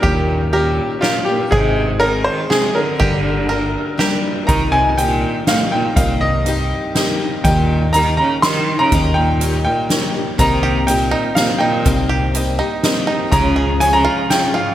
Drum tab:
RD |x-x-xx|x-x-xx|--x-xx|------|
HH |------|------|------|x-x-x-|
SD |----o-|----o-|----o-|----o-|
BD |o-----|o-----|o-----|o-----|

RD |------|------|------|------|
HH |x-x-x-|x-x-x-|x-x-x-|x-x-x-|
SD |----o-|----o-|----o-|----o-|
BD |o-----|o-----|o-----|o-----|

RD |------|------|
HH |x-x-x-|x-x-x-|
SD |----o-|----o-|
BD |o-----|o-----|